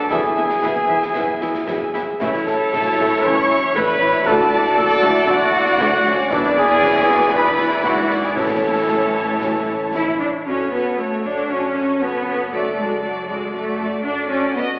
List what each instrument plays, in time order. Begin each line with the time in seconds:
Already playing: harp B2 F#3 D4 F#4 D5 F#5, french horn section D4, trumpet section A4, violin section A5
0.10 double bass section E1, cello section E2, trombone section E3 B3, harp E3, viola section B3 E4, french horn section E4, trumpet section G#4, violin section E5 G#5, concert bass drum, snare
0.29 harp E4
0.36 double bass section E1, cello section E2, viola section B3 E4, violin section E5
0.46 harp B4, snare
0.62 double bass section E1, cello section E2, french horn section B3, viola section B3 E4, violin section E5, harp E5, concert bass drum, snare
0.81 harp E6
0.88 double bass section E1, cello section E2, viola section B3 E4, french horn section E4, violin section E5
0.98 harp E5
1.02 snare
1.14 double bass section E1, cello section E2, trombone section E3 B3, viola section B3 E4, harp B3, violin section E5, concert bass drum, snare
1.33 harp E4
1.41 double bass section E1, cello section E2, viola section B3 E4, violin section E5, snare
1.50 harp B4
1.55 snare
1.66 double bass section E1, cello section E2, viola section B3 E4, french horn section G#4, violin section E5, harp E5, concert bass drum, snare
1.85 harp E6
1.93 double bass section E1, cello section E2, viola section B3 E4, violin section E5, snare
2.03 harp E5
2.20 double bass section A1, cello section A2, harp A2, trombone section E3 C#4, viola section A3 E4, trumpet section E4, violin section C#5 E5, concert bass drum, snare, crash
2.34 snare
2.39 harp C#4
2.47 trumpet section A4, violin section A5, snare
2.56 harp E5
2.72 double bass section A1, cello section A2, viola section C#3, harp C#5, concert bass drum, snare
2.91 harp E5
2.98 double bass section A1, cello section A2, viola section A3
3.08 harp C#5
3.23 double bass section A1, cello section A2, harp E3, viola section E3, trombone section E3 C#4, french horn section C#4, trumpet section C#5, violin section C#6, concert bass drum
3.41 harp C#4
3.50 snare
3.58 harp E5
3.75 double bass section A1, cello section A2, viola section A3, french horn section D4, trumpet section B4, harp C#5, violin section B5, concert bass drum, snare
3.93 harp E5
4.01 double bass section A1, cello section A2, viola section E3, french horn section E4, snare
4.10 harp C#5, snare
4.26 cello section D2, double bass section D2, trombone section D3 D4, harp D3, viola section A3 F#4, french horn section F#4, trumpet section A4, violin section D5 A5, concert bass drum, snare
4.45 harp D4
4.52 french horn section E4
4.61 harp D5, snare
4.77 cello section D2, double bass section D2, viola section D3, harp F#4, french horn section F#4, trumpet section A4, violin section A5, concert bass drum, snare
4.95 harp F#5
5.02 cello section D2, double bass section D2, viola section A3, french horn section E4
5.12 harp D5, snare
5.27 double bass section D2, cello section D2, trombone section D3 D4, viola section F#3, harp A3, trumpet section F#4, violin section F#5, concert bass drum, snare
5.46 harp D4
5.53 snare
5.63 harp D5, snare
5.78 double bass section D2, cello section D2, viola section A3, french horn section D4, harp F#4, concert bass drum, snare
5.97 harp F#5
6.04 double bass section D2, cello section D2, viola section F#3, french horn section C#4, snare
6.14 harp D5
6.30 double bass section E1, timpani E2, cello section E2, trombone section E3 D4, viola section E3 E4, harp E3, french horn section B3, trumpet section D4, violin section D5, concert bass drum, snare
6.44 snare
6.48 harp D4
6.57 trumpet section G#4, violin section G#5, snare
6.66 harp B4
6.81 french horn section C#4, harp D5, concert bass drum, snare
7.00 harp E5
7.07 french horn section B3
7.16 harp D5
7.32 trombone section E3 D4, viola section E3 E4, harp B3, french horn section D4, trumpet section B4, violin section D5 B5, concert bass drum
7.51 harp D4
7.58 french horn section E4, snare
7.84 double bass section G#1, cello section G#2, trumpet section F#4, harp D5, violin section F#5, concert bass drum, snare
8.02 harp E5
8.10 snare
8.19 harp D5, violin section G#5, snare
8.25 trumpet section G#4
8.35 double bass section A1, timpani A2, harp A2, cello section A2, trombone section E3 C#4, viola section E3 E4, french horn section C#4, trumpet section A4, violin section C#5 A5, concert bass drum, snare
8.54 harp C#4
8.71 harp A4
8.88 harp C#5, concert bass drum, snare
9.06 harp E5
9.24 harp C#5
9.41 harp E3, trombone section E3 C#4, concert bass drum, snare
9.59 harp C#4
9.76 harp A4
9.94 cello section E4, harp C#5, concert bass drum, snare
10.11 harp E5
10.20 cello section D4
10.28 harp C#5
10.45 harp F#2, double bass section F#2, cello section C#4, viola section F#4, violin section A4 C#5
10.63 harp C#3
10.72 double bass section F#2, cello section B3, viola section F#4, violin section A4 C#5
10.81 harp F#4
10.98 double bass section F#2, cello section A3, viola section F#4, violin section A4 C#5, harp A4
11.15 harp C#5
11.23 double bass section F#2, cello section D4, viola section F#4, violin section A4 C#5
11.32 harp F#4
11.49 harp F#2, double bass section F#2, cello section C#4, viola section F#4, violin section A4 C#5
11.66 harp C#3
11.75 double bass section F#2, viola section F#4, violin section A4 C#5
11.83 harp F#4
12.00 double bass section F#2, cello section B3, viola section F#4, harp A4, violin section A4 C#5
12.18 harp C#5
12.26 double bass section F#2, viola section F#4, violin section A4 C#5
12.34 harp F#4
12.51 double bass section F#2, timpani F#2, harp F#2, cello section A3, viola section F#4, violin section A4 D5
12.69 harp F#3
12.76 double bass section F#2, cello section G#3, viola section F#4, violin section A4 D5
12.86 harp F#4
13.02 double bass section F#2, cello section F#3, viola section F#4, harp A4, violin section A4 D5
13.19 harp D5
13.27 double bass section F#2, cello section G#3, viola section F#4, violin section A4 D5
13.37 harp F#4
13.53 harp F#2, double bass section F#2, cello section A3, viola section F#4, violin section A4 D5
13.69 harp F#3
13.78 double bass section F#2, viola section F#4, violin section A4 D5
13.87 harp F#4
14.03 double bass section F#2, cello section D4, viola section F#4, harp A4, violin section A4 D5
14.21 harp D5
14.29 double bass section F#2, cello section C#4, viola section F#4, violin section A4 D5
14.38 harp F#4
14.54 double bass section B1, harp B2, cello section B3, violin section F#4 D#5, viola section F#4
14.72 harp F#3